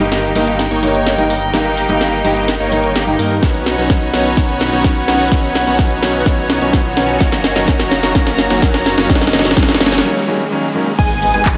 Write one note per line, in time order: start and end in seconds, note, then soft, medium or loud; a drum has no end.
0.00 0.33 G1 loud
0.00 0.22 G2 medium
0.00 0.22 D#3 medium
0.00 0.22 G3 medium
0.00 0.33 A#3 medium
0.00 0.22 A#3 medium
0.00 0.33 D#4 medium
0.00 7.17 D#4 medium
0.00 0.23 D#4 medium
0.00 0.33 G4 loud
0.00 3.39 G4 medium
0.00 3.39 A#4 medium
0.00 3.39 G5 medium
0.00 closed hi-hat soft
0.00 riser medium
0.12 snare medium
0.12 closed hi-hat medium
0.24 closed hi-hat soft
0.35 0.69 G1 loud
0.35 0.57 G2 medium
0.35 0.58 D#3 medium
0.35 0.58 G3 medium
0.35 0.60 A#3 loud
0.35 0.58 A#3 medium
0.35 0.60 D#4 medium
0.35 0.58 D#4 loud
0.35 0.60 G4 loud
0.35 open hi-hat medium
0.47 closed hi-hat soft
0.59 snare medium
0.59 closed hi-hat medium
0.71 1.16 G1 loud
0.71 1.15 A#3 medium
0.71 1.15 D#4 medium
0.71 1.15 C#5 loud
0.71 closed hi-hat soft
0.82 0.96 G2 medium
0.82 0.97 D#3 medium
0.82 0.97 G3 medium
0.82 0.97 A#3 medium
0.82 0.97 D#4 medium
0.82 open hi-hat loud
0.95 closed hi-hat soft
1.07 snare medium
1.07 closed hi-hat medium
1.18 1.51 G1 medium
1.18 1.51 G2 medium
1.18 1.51 D#3 medium
1.18 1.51 G3 medium
1.18 1.34 A#3 medium
1.18 1.51 A#3 medium
1.18 1.34 D#4 medium
1.18 1.51 D#4 medium
1.18 1.34 A#4 medium
1.18 closed hi-hat soft
1.30 open hi-hat medium
1.42 closed hi-hat soft
1.53 1.87 G1 loud
1.53 1.67 G2 medium
1.53 1.67 D#3 medium
1.53 1.68 G3 medium
1.53 1.86 A#3 medium
1.53 1.68 A#3 medium
1.53 1.86 D#4 medium
1.53 1.68 D#4 medium
1.53 1.86 G4 medium
1.53 snare medium
1.53 closed hi-hat medium
1.66 closed hi-hat soft
1.77 open hi-hat loud
1.89 2.22 G1 loud
1.89 2.11 G2 medium
1.89 2.11 D#3 medium
1.89 2.11 G3 medium
1.89 2.22 A#3 medium
1.89 2.12 A#3 medium
1.89 2.22 D#4 medium
1.89 2.12 D#4 medium
1.89 2.22 G4 loud
1.89 closed hi-hat soft
2.01 snare medium
2.01 closed hi-hat medium
2.13 closed hi-hat soft
2.24 2.58 G1 loud
2.24 2.46 G2 medium
2.24 2.47 D#3 medium
2.24 2.47 G3 medium
2.24 2.50 A#3 medium
2.24 2.47 A#3 medium
2.24 2.50 D#4 medium
2.24 2.47 D#4 loud
2.24 2.50 G4 loud
2.24 open hi-hat medium
2.36 closed hi-hat soft
2.48 snare medium
2.48 closed hi-hat medium
2.60 2.93 G1 loud
2.60 2.93 A#3 medium
2.60 2.93 D#4 medium
2.60 2.93 C#5 loud
2.60 closed hi-hat soft
2.71 2.85 G2 medium
2.71 2.86 D#3 medium
2.71 2.86 G3 medium
2.71 2.86 A#3 medium
2.71 2.86 D#4 medium
2.71 open hi-hat loud
2.84 closed hi-hat soft
2.95 3.17 G1 medium
2.95 3.16 A#3 medium
2.95 3.16 D#4 medium
2.95 3.16 G4 loud
2.95 snare medium
2.95 closed hi-hat medium
3.07 3.40 G2 medium
3.07 3.40 D#3 medium
3.07 3.40 G3 medium
3.07 3.40 A#3 medium
3.07 3.40 D#4 medium
3.07 closed hi-hat soft
3.19 3.40 G2 medium
3.19 3.35 A#3 medium
3.19 3.35 D#4 medium
3.19 3.35 A#4 loud
3.19 open hi-hat medium
3.31 closed hi-hat soft
3.42 3.76 B1 loud
3.42 3.56 D#3 medium
3.42 3.56 F#3 medium
3.42 3.75 B3 medium
3.42 3.57 B3 medium
3.42 3.75 C#4 medium
3.42 3.57 C#4 medium
3.42 3.75 D#4 medium
3.42 3.75 F#4 medium
3.42 7.17 B4 medium
3.42 3.75 C#5 medium
3.42 9.06 C#5 medium
3.42 7.17 F#5 medium
3.42 kick loud
3.42 snare medium
3.42 closed hi-hat medium
3.42 cabasa soft
3.54 closed hi-hat soft
3.54 cabasa soft
3.66 snare medium
3.66 open hi-hat loud
3.66 cabasa medium
3.77 4.11 B1 loud
3.77 4.00 D#3 medium
3.77 4.00 F#3 medium
3.77 4.11 B3 medium
3.77 4.00 B3 medium
3.77 4.11 C#4 medium
3.77 4.01 C#4 medium
3.77 4.11 D#4 medium
3.77 4.11 F#4 medium
3.77 4.11 C#5 medium
3.77 closed hi-hat soft
3.77 cabasa soft
3.90 kick loud
3.90 snare medium
3.90 closed hi-hat medium
3.90 cabasa soft
4.02 closed hi-hat soft
4.02 cabasa soft
4.13 4.35 B1 medium
4.13 4.35 D#3 medium
4.13 4.35 F#3 medium
4.13 4.35 B3 medium
4.13 4.35 C#4 medium
4.13 4.36 C#4 medium
4.13 4.35 D#4 medium
4.13 4.35 F#4 medium
4.13 4.35 C#5 medium
4.13 snare medium
4.13 open hi-hat medium
4.13 cabasa medium
4.25 closed hi-hat soft
4.25 cabasa soft
4.37 4.70 B1 loud
4.37 4.51 D#3 medium
4.37 4.51 F#3 medium
4.37 4.70 B3 medium
4.37 4.51 B3 medium
4.37 4.70 C#4 medium
4.37 4.51 C#4 medium
4.37 4.70 D#4 medium
4.37 4.70 F#4 medium
4.37 4.70 C#5 medium
4.37 kick loud
4.37 snare medium
4.37 closed hi-hat medium
4.37 cabasa soft
4.49 closed hi-hat soft
4.61 snare medium
4.61 open hi-hat loud
4.61 cabasa medium
4.72 5.06 B1 medium
4.72 4.94 D#3 medium
4.72 4.95 F#3 medium
4.72 5.05 B3 medium
4.72 4.95 B3 medium
4.72 5.05 C#4 medium
4.72 4.95 C#4 medium
4.72 5.05 D#4 medium
4.72 5.05 F#4 medium
4.72 5.05 C#5 loud
4.72 closed hi-hat soft
4.72 cabasa soft
4.84 kick loud
4.84 snare medium
4.84 closed hi-hat medium
4.84 cabasa soft
4.96 closed hi-hat soft
5.07 5.29 B1 medium
5.07 5.29 D#3 medium
5.07 5.30 F#3 medium
5.07 5.30 B3 medium
5.07 5.30 C#4 medium
5.07 5.30 D#4 medium
5.07 5.30 F#4 medium
5.07 5.30 C#5 loud
5.07 snare medium
5.07 open hi-hat medium
5.07 cabasa medium
5.20 closed hi-hat soft
5.20 cabasa soft
5.31 5.65 B1 loud
5.31 5.45 D#3 medium
5.31 5.45 F#3 medium
5.31 5.64 B3 medium
5.31 5.46 B3 medium
5.31 5.64 C#4 medium
5.31 5.46 C#4 medium
5.31 5.64 D#4 medium
5.31 5.64 F#4 medium
5.31 5.64 C#5 medium
5.31 kick loud
5.31 snare medium
5.31 closed hi-hat medium
5.31 cabasa soft
5.44 closed hi-hat soft
5.44 cabasa soft
5.55 snare medium
5.55 open hi-hat loud
5.55 cabasa medium
5.66 6.00 B1 loud
5.66 5.89 D#3 medium
5.66 5.89 F#3 medium
5.66 6.00 B3 medium
5.66 5.89 B3 medium
5.66 6.00 C#4 medium
5.66 5.90 C#4 medium
5.66 6.00 D#4 medium
5.66 6.00 F#4 medium
5.66 6.00 C#5 medium
5.66 closed hi-hat soft
5.66 cabasa soft
5.79 kick loud
5.79 snare medium
5.79 closed hi-hat medium
5.79 cabasa soft
5.91 closed hi-hat soft
5.91 cabasa soft
6.02 6.24 B1 loud
6.02 6.24 D#3 medium
6.02 6.24 F#3 medium
6.02 6.24 B3 medium
6.02 6.24 C#4 medium
6.02 6.25 C#4 medium
6.02 6.24 D#4 medium
6.02 6.24 F#4 medium
6.02 6.24 C#5 loud
6.02 snare medium
6.02 open hi-hat medium
6.02 cabasa medium
6.14 closed hi-hat soft
6.14 cabasa soft
6.26 6.59 B1 loud
6.26 6.40 D#3 medium
6.26 6.40 F#3 medium
6.26 6.59 B3 medium
6.26 6.40 B3 medium
6.26 6.59 C#4 medium
6.26 6.40 C#4 medium
6.26 6.59 D#4 medium
6.26 6.59 F#4 medium
6.26 kick loud
6.26 snare medium
6.26 closed hi-hat medium
6.26 cabasa soft
6.38 closed hi-hat soft
6.50 snare medium
6.50 open hi-hat loud
6.50 cabasa medium
6.61 6.95 B1 loud
6.61 6.83 D#3 medium
6.61 6.84 F#3 medium
6.61 6.94 B3 medium
6.61 6.84 B3 medium
6.61 6.94 C#4 medium
6.61 6.84 C#4 medium
6.61 6.94 D#4 medium
6.61 6.94 F#4 medium
6.61 6.94 C#5 medium
6.61 closed hi-hat soft
6.61 cabasa soft
6.73 kick loud
6.73 snare medium
6.73 closed hi-hat medium
6.73 cabasa soft
6.85 closed hi-hat soft
6.96 7.18 B1 medium
6.96 7.18 D#3 medium
6.96 7.19 F#3 medium
6.96 7.19 B3 medium
6.96 7.19 C#4 medium
6.96 7.19 C#4 loud
6.96 7.19 D#4 medium
6.96 7.19 F#4 medium
6.96 7.19 C#5 loud
6.96 snare medium
6.96 open hi-hat medium
6.96 cabasa medium
7.09 closed hi-hat soft
7.09 cabasa soft
7.20 7.54 F#1 loud
7.20 7.34 D#3 medium
7.20 7.34 F#3 medium
7.20 7.53 A#3 medium
7.20 7.35 A#3 medium
7.20 7.53 C#4 medium
7.20 7.35 C#4 medium
7.20 7.53 D#4 medium
7.20 7.53 F#4 medium
7.20 10.01 F#4 medium
7.20 10.01 A#4 medium
7.20 7.53 C#5 medium
7.20 10.01 A#5 medium
7.20 kick loud
7.20 snare medium
7.20 closed hi-hat medium
7.20 cabasa soft
7.32 snare medium
7.32 closed hi-hat soft
7.32 cabasa soft
7.44 snare loud
7.44 open hi-hat loud
7.44 cabasa medium
7.55 7.66 F#1 medium
7.55 7.66 D#3 medium
7.55 7.66 F#3 medium
7.55 7.66 A#3 medium
7.55 7.66 C#4 medium
7.55 7.66 C#4 loud
7.55 7.66 D#4 medium
7.55 7.66 F#4 medium
7.55 7.66 C#5 loud
7.55 snare medium
7.55 closed hi-hat soft
7.55 cabasa soft
7.67 8.01 F#1 loud
7.67 7.81 D#3 medium
7.67 7.82 F#3 medium
7.67 7.82 A#3 medium
7.67 7.82 C#4 medium
7.67 kick loud
7.67 snare medium
7.67 closed hi-hat medium
7.67 cabasa soft
7.80 snare medium
7.80 closed hi-hat soft
7.80 cabasa soft
7.91 snare medium
7.91 open hi-hat medium
7.91 cabasa medium
8.03 8.13 F#1 loud
8.03 8.13 D#3 medium
8.03 8.13 F#3 medium
8.03 8.13 A#3 medium
8.03 8.13 C#4 medium
8.03 8.14 C#4 loud
8.03 8.13 D#4 medium
8.03 8.13 F#4 medium
8.03 8.13 C#5 loud
8.03 snare medium
8.03 closed hi-hat soft
8.03 cabasa soft
8.14 8.48 F#1 loud
8.14 8.29 D#3 medium
8.14 8.29 F#3 medium
8.14 8.48 A#3 medium
8.14 8.29 A#3 medium
8.14 8.48 C#4 medium
8.14 8.29 C#4 medium
8.14 8.48 D#4 medium
8.14 8.48 F#4 medium
8.14 8.48 C#5 medium
8.14 kick loud
8.14 snare medium
8.14 closed hi-hat medium
8.14 cabasa soft
8.27 snare medium
8.27 closed hi-hat soft
8.38 snare loud
8.38 open hi-hat loud
8.38 cabasa medium
8.50 8.60 F#1 medium
8.50 8.60 D#3 medium
8.50 8.60 F#3 medium
8.50 8.60 A#3 medium
8.50 8.61 A#3 medium
8.50 8.60 C#4 medium
8.50 8.61 C#4 medium
8.50 8.60 D#4 medium
8.50 8.60 F#4 medium
8.50 8.60 C#5 loud
8.50 snare medium
8.50 closed hi-hat soft
8.50 cabasa soft
8.62 8.95 F#1 loud
8.62 8.76 D#3 medium
8.62 8.76 F#3 medium
8.62 8.95 A#3 medium
8.62 8.76 A#3 medium
8.62 8.95 C#4 medium
8.62 8.77 C#4 medium
8.62 8.95 D#4 medium
8.62 8.95 F#4 medium
8.62 8.95 C#5 loud
8.62 kick loud
8.62 snare loud
8.62 closed hi-hat loud
8.62 cabasa soft
8.74 snare medium
8.74 closed hi-hat soft
8.86 snare loud
8.86 open hi-hat medium
8.86 cabasa medium
8.97 9.07 F#1 loud
8.97 9.07 D#3 medium
8.97 9.08 F#3 medium
8.97 9.08 A#3 loud
8.97 9.08 A#3 medium
8.97 9.08 C#4 medium
8.97 9.08 D#4 medium
8.97 9.08 F#4 medium
8.97 9.08 C#5 loud
8.97 snare medium
8.97 closed hi-hat soft
8.97 cabasa soft
9.09 9.31 F#1 loud
9.09 9.23 D#3 medium
9.09 9.23 F#3 medium
9.09 9.24 A#3 medium
9.09 9.31 C#4 medium
9.09 9.24 C#4 medium
9.09 9.31 D#4 medium
9.09 9.31 C#5 loud
9.09 10.03 D#5 medium
9.09 kick loud
9.09 snare loud
9.09 closed hi-hat loud
9.09 cabasa soft
9.15 snare medium
9.21 snare medium
9.21 closed hi-hat soft
9.21 cabasa soft
9.27 snare medium
9.33 9.55 F#1 loud
9.33 9.47 D#3 medium
9.33 9.47 F#3 medium
9.33 9.55 A#3 medium
9.33 9.47 A#3 medium
9.33 9.55 C#4 medium
9.33 9.47 C#4 medium
9.33 9.55 D#4 medium
9.33 9.55 F#4 medium
9.33 9.55 C#5 medium
9.33 snare loud
9.33 open hi-hat loud
9.33 cabasa medium
9.39 snare medium
9.45 snare medium
9.45 closed hi-hat soft
9.45 cabasa soft
9.51 snare medium
9.56 9.78 F#1 loud
9.56 9.70 D#3 medium
9.56 9.71 F#3 medium
9.56 9.79 A#3 medium
9.56 9.71 A#3 medium
9.56 9.79 C#4 medium
9.56 9.71 C#4 medium
9.56 9.79 D#4 medium
9.56 9.79 F#4 medium
9.56 9.79 C#5 medium
9.56 kick loud
9.56 snare loud
9.56 closed hi-hat loud
9.56 cabasa soft
9.63 snare medium
9.69 snare medium
9.69 closed hi-hat soft
9.69 cabasa soft
9.75 snare loud
9.80 10.02 F#1 medium
9.80 9.94 D#3 medium
9.80 9.94 F#3 medium
9.80 10.02 A#3 medium
9.80 9.94 A#3 medium
9.80 10.02 C#4 medium
9.80 9.95 C#4 medium
9.80 10.02 D#4 medium
9.80 10.02 F#4 medium
9.80 10.02 C#5 loud
9.80 snare loud
9.80 open hi-hat medium
9.80 cabasa medium
9.86 snare medium
9.92 snare medium
9.92 closed hi-hat soft
9.92 cabasa soft
9.98 snare medium
10.04 10.18 D#3 medium
10.04 10.18 F#3 medium
10.04 10.18 A#3 medium
10.04 10.18 C#4 loud
10.04 swell medium
10.27 10.41 D#3 medium
10.27 10.42 F#3 medium
10.27 10.42 A#3 medium
10.27 10.42 C#4 medium
10.51 10.65 D#3 medium
10.51 10.65 F#3 medium
10.51 10.65 A#3 medium
10.51 10.66 C#4 loud
10.74 10.89 D#3 medium
10.74 10.89 F#3 medium
10.74 10.89 A#3 medium
10.74 10.89 C#4 loud
10.98 11.32 G#1 loud
10.98 11.58 G#3 medium
10.98 11.31 B3 medium
10.98 11.58 B3 medium
10.98 11.31 D#4 medium
10.98 11.58 D#4 medium
10.98 11.31 G#4 medium
10.98 11.31 G#5 loud
10.98 kick loud
10.98 closed hi-hat loud
10.98 crash loud
10.98 impact medium
10.98 cabasa soft
11.10 closed hi-hat soft
11.10 cabasa soft
11.22 open hi-hat loud
11.22 cabasa medium
11.34 11.58 G#1 loud
11.34 11.58 B3 medium
11.34 11.58 D#4 medium
11.34 11.58 G#4 loud
11.34 11.58 G#5 loud
11.34 closed hi-hat soft
11.34 cabasa soft
11.45 kick loud
11.45 clap loud
11.45 closed hi-hat loud
11.45 cabasa soft